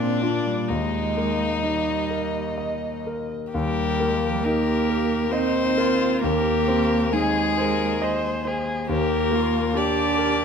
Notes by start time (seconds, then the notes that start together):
Already playing: A#2 D4 D5
0.01 C4
0.21 A#3 D4 F4
0.46 G3
0.68 D#2 G#3 D#4
0.73 D#5
1.17 A#3
1.62 G3 D#4
2.10 A#4
2.58 D#5
3.07 A#4
3.52 D#2 G3 G4 A#4
4.00 A#3
4.08 G#3
4.17 G3
4.25 F3
4.34 G3
4.43 A#3 D#4 G4 A#4
4.90 A#4
5.31 C4 D#4 C5 D#5
5.77 F4 A#4
6.22 D#2 A#3 G4 A#4
6.68 C4
7.13 G#3 D#4 G#4
7.57 A#4 C5
8.02 C5 D#5
8.45 G#4 C5
8.88 D#2 A#3 G4 A#4
9.31 A#3 F4
9.74 D4 G4 D5
9.78 G4
10.18 A#4